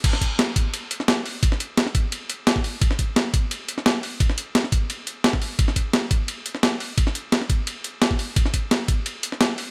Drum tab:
CC |x---------------|----------------|----------------|----------------|
RD |x---x---x---x---|x---x---x---x---|x---x---x---x---|x---x---x---x---|
HH |x-x-x-x-x-x-x-o-|x-x-x-x-x-x-x-o-|x-x-x-x-x-x-x-o-|x-x-x-x-x-x-x-o-|
SD |-o--o------oo---|-o--oo------o---|-o--o------oo---|-o--oo------oo--|
BD |o-o---o---------|o-----o------o--|o-o---o---------|o-----o------o--|

CC |----------------|----------------|----------------|
RD |x---x---x---x---|x---x---x---x---|x---x---x---x---|
HH |x-x-x-x-x-x-x-o-|x-x-x-x-x-x-x-o-|x-x-x-x-x-x-x-o-|
SD |-o--o------oo---|-o--oo------o---|-o--o------oo---|
BD |o-o---o---------|o-----o------o--|o-o---o---------|